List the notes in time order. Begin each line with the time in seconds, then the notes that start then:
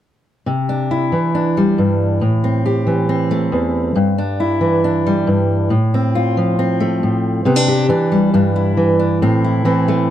0.46 C3
0.69 D4
0.91 E4
1.12 E3
1.35 D4
1.57 G3
1.78 G2
2.21 A2
2.44 C4
2.66 G4
2.87 E3
3.09 C4
3.31 A3
3.52 E2
3.96 G2
4.18 D4
4.40 E4
4.61 E3
4.84 D4
5.07 G3
5.27 G2
5.70 A2
5.94 C4
6.15 F4
6.37 F3
6.59 C4
6.80 A3
7.03 A2
7.45 C3 B3
7.56 D4
7.68 G4
7.89 E3 D4
8.12 G3
8.34 G2 D4
8.56 E4
8.77 E3
8.99 D4
9.22 A2 C4
9.44 E4
9.65 E3 C4
9.88 A3